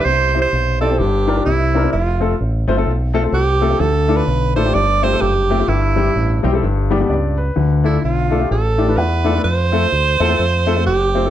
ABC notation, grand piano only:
X:1
M:4/4
L:1/16
Q:"Swing" 1/4=128
K:C
V:1 name="Grand piano"
z2 [CEGc] z3 [CEGd] [CEGc] z2 [DFG_B] [DFGB] z2 [CDEB] [CDEB] | z2 [A,CFA] z3 [A,CFc] [A,CFA] z2 [A,CFA] [A,CFA] z2 [A,CFA] [A,CFA] | z2 [A,DFA] z3 [A,DFA] [A,DFG] z2 [A,CFG] [A,CFA] z2 [A,CFG] [A,CFG] | z2 [G,CEG] z3 [G,CEG] [G,CEA] z2 [G,B,DG] [G,B,DG] d2 B2- |
B2 [A,DFA] z3 [A,DFA] [A,DFG] z2 [A,DFG] [A,DFB] z2 [A,DFA] [A,DFA] | z2 [A,CFA] z3 [A,CFA] [A,CFA] z2 [A,CFA] [A,CFA] z2 [A,CFc] [A,CFA] |]
V:2 name="Grand piano" clef=bass
C,6 z2 G,,4 C,4 | z16 | D,6 z2 G,,6 z2 | G,,6 z2 G,,6 z2 |
D,6 z8 z2 | z16 |]